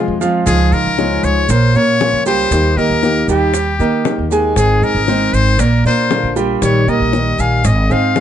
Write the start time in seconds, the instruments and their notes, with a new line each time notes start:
Already playing: steel-string acoustic guitar C3 F3 G#3 C4 F4, grand piano G#3 G#4 C5, muted trumpet F4
0.08 upright bass F2
0.21 grand piano F3 F4 F5, steel-string acoustic guitar G#3 C4 F4, high bongo, maracas
0.47 upright bass C#2, steel-string acoustic guitar C#3 F3 G#3 D#4 F4, grand piano F3 F4 F5, muted trumpet G#4, high bongo, maracas
0.72 upright bass C#3, steel-string acoustic guitar G#3 D#4 F4, muted trumpet A#4, maracas
0.85 upright bass C#2
0.97 steel-string acoustic guitar C#3 F3 G#3 D#4 F4, grand piano G#3 G#4 C#5, high bongo, maracas
1.23 upright bass C#2, muted trumpet C#5, maracas
1.49 upright bass A#1, grand piano A#3 A#4 C#5, muted trumpet C5, muted steel-string acoustic guitar stroke, high bongo, maracas
1.74 upright bass A#2, grand piano A#3 A#4 C#5, steel-string acoustic guitar A#3 C#4 F4, muted trumpet C#5, maracas
2.00 steel-string acoustic guitar F3 A#3 C#4 F4, high bongo, low bongo, maracas
2.13 upright bass C#2
2.26 grand piano G3 G4 G5, steel-string acoustic guitar A#3 C#4 F4, muted trumpet C5, maracas
2.51 upright bass D#2, steel-string acoustic guitar D#3 A#3 D#4 G4, high bongo, maracas
2.77 upright bass D#3, grand piano A#3 A#4 D#5, steel-string acoustic guitar A#3 D#4 G4, muted trumpet A#4, maracas
2.90 upright bass D#2
3.02 steel-string acoustic guitar D#3 A#3 D#4 G4, high bongo, maracas
3.28 upright bass D#2, grand piano G3 G4 G5, muted trumpet G4, high bongo, maracas
3.54 muted steel-string acoustic guitar stroke, high bongo, maracas
3.79 upright bass D#3, grand piano A#3 A#4 D#5, steel-string acoustic guitar A#3 D#4 G4, high bongo, maracas
4.05 steel-string acoustic guitar D#3 A#3 D#4 G4, high bongo, low bongo, maracas
4.18 upright bass D#2
4.30 grand piano G#3 G#4 G#5, steel-string acoustic guitar A#3 D#4 G4, high bongo, maracas
4.56 upright bass G#1, steel-string acoustic guitar D#3 G#3 C4 D#4 G#4, grand piano G#3 G#4 G#5, muted trumpet G#4, high bongo, maracas
4.82 upright bass G#2, steel-string acoustic guitar C4 D#4 G#4, muted trumpet A#4, maracas
4.95 upright bass G#1
5.08 steel-string acoustic guitar D#3 G#3 C4 D#4 G#4, grand piano C4 C5 D#5, high bongo, maracas
5.33 upright bass G#1, muted trumpet C5, maracas
5.59 upright bass A#1, grand piano A#3 A#4 D5, muted trumpet A#4, muted steel-string acoustic guitar stroke, high bongo, maracas
5.85 upright bass A#2, grand piano A#3 A#4 D5, steel-string acoustic guitar A#3 D4 F4, muted trumpet C5, maracas
6.11 steel-string acoustic guitar D3 A#3 D4 F4, high bongo, low bongo, maracas
6.23 upright bass A#1
6.36 grand piano G3 G4 G5, steel-string acoustic guitar A#3 D4 F4, maracas
6.62 upright bass A#1, steel-string acoustic guitar D#3 G3 D#4 G4, muted trumpet C#5, high bongo, maracas
6.87 upright bass A#2, steel-string acoustic guitar G3 D#4 G4, grand piano A#3 A#4 D#5, muted trumpet D#5, maracas
7.00 upright bass A#1
7.13 steel-string acoustic guitar D#3 G3 D#4 G4, high bongo, maracas
7.38 upright bass A#1, muted trumpet F5, grand piano G#5, high bongo, maracas
7.64 upright bass G#1, muted trumpet D#5, high bongo, maracas
7.90 upright bass G#2, grand piano C4 C5 D#5, steel-string acoustic guitar C4 D#4 G#4, muted trumpet F5, high bongo, maracas
8.16 steel-string acoustic guitar D#3 G#3 C4, high bongo, low bongo, maracas